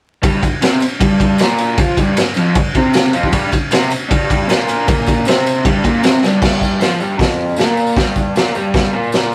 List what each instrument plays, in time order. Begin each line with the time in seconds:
0.22 overdriven electric guitar G2 G3, kick, ride, tambourine
0.43 overdriven electric guitar G2, kick, ride, tambourine
0.62 overdriven electric guitar C3 C4, snare, ride, tambourine
0.80 muted overdriven electric guitar stroke, ride, tambourine
1.00 overdriven electric guitar G2 G3, kick, ride
1.20 kick, ride
1.38 overdriven electric guitar A#2 A#3, snare, ride, tambourine
1.58 ride, tambourine
1.78 overdriven electric guitar F3 F4, kick, ride, tambourine
1.97 overdriven electric guitar G2 G3, kick, ride, tambourine
2.17 overdriven electric guitar G2, snare, ride, tambourine
2.34 overdriven electric guitar F2 F3, ride, tambourine
2.55 overdriven electric guitar G2, kick, ride
2.75 overdriven electric guitar C3 C4, kick, ride
2.93 snare, ride, tambourine
3.13 overdriven electric guitar F2 F3, ride, tambourine
3.23 kick
3.32 overdriven electric guitar G2 G3, kick, ride, tambourine
3.52 overdriven electric guitar G2, kick, ride, tambourine
3.71 overdriven electric guitar C3 C4, snare, ride, tambourine
3.90 muted overdriven electric guitar stroke, ride, tambourine
4.09 overdriven electric guitar G2 G3, kick, ride
4.30 kick, ride
4.48 overdriven electric guitar A#2 A#3, snare, ride, tambourine
4.68 ride, tambourine
4.88 overdriven electric guitar A#2 A#3, kick, ride, tambourine
5.06 kick, ride, tambourine
5.25 overdriven electric guitar C3 C4, ride, tambourine
5.29 snare
5.46 ride, tambourine
5.64 overdriven electric guitar G2 G3, kick, ride
5.83 overdriven electric guitar A#2 A#3, kick, ride, tambourine
6.03 overdriven electric guitar C3 C4, snare, ride, tambourine
6.23 overdriven electric guitar G2 G3, snare, tambourine
6.41 overdriven electric guitar G2 G3, kick, snare, crash
6.61 kick, tambourine
6.80 overdriven electric guitar F3 F4, snare, open hi-hat, tambourine
7.00 overdriven electric guitar G2 G3, tambourine
7.19 overdriven electric guitar F2 F3, kick, snare, open hi-hat
7.30 tambourine
7.49 tambourine
7.56 overdriven electric guitar A#2 A#3, snare, open hi-hat, tambourine
7.67 tambourine
7.77 tambourine
7.87 tambourine
7.96 overdriven electric guitar G2 G3, kick, snare, open hi-hat
8.16 kick, tambourine
8.35 overdriven electric guitar A#2 A#3, snare, open hi-hat, tambourine
8.54 overdriven electric guitar G2 G3, tambourine
8.74 kick, snare, open hi-hat
8.84 tambourine
8.92 overdriven electric guitar A#2 A#3
9.03 tambourine
9.12 snare, open hi-hat, tambourine
9.24 tambourine